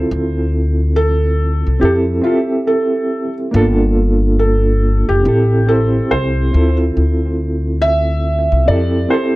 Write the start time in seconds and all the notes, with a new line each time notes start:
Already playing: C4 E4 F4 A4
0.11 D2
0.96 A4
1.67 C2
1.80 F2 C4 E4 G4
1.85 A4
2.22 C4 F4 G4 E5
2.27 A4
2.67 A4
3.51 G1 A#3 D4 F4
3.56 A4
4.39 A4
5.09 F1 G4
5.24 A1 C4 E4 G4
5.28 A4
5.66 C4 E4 G4 A4
5.71 C5
6.11 C2 C5
6.51 D2 C4 E4 F4
6.56 A4
6.97 D2
7.82 E5
8.52 C2
8.66 F2 C4 E4 G4 D5
8.71 A4
9.09 C4 E4 G4 C5
9.14 A4